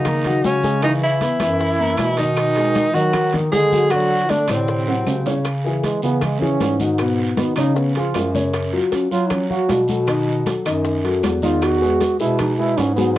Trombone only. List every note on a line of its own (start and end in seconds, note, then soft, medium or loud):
0.00 0.44 D#3 medium
0.44 0.80 C#3 medium
0.82 0.91 D#3 medium
1.02 2.18 E3 medium
2.17 2.96 D#3 medium
2.95 3.33 F#3 medium
3.53 3.94 G#3 medium
3.92 4.31 F#3 medium
4.30 4.50 D3 medium
4.49 5.26 C3 medium
5.84 6.02 G#3 medium
6.03 6.23 B3 loud
6.22 6.42 G#3 medium
6.40 6.79 C#4 loud
7.38 7.56 B3 medium
7.57 7.78 D#4 loud
7.76 7.96 B3 medium
7.96 8.32 F4 loud
8.93 9.10 C#4 medium
9.12 9.33 F4 loud
9.32 9.49 C#4 medium
9.50 9.86 F#4 loud
11.44 11.64 F4 loud
11.63 12.20 F#4 loud
12.20 12.41 E4 loud
12.39 12.60 D#4 medium
12.58 12.79 E4 loud
12.78 12.95 C#4 loud
12.96 13.17 B3 loud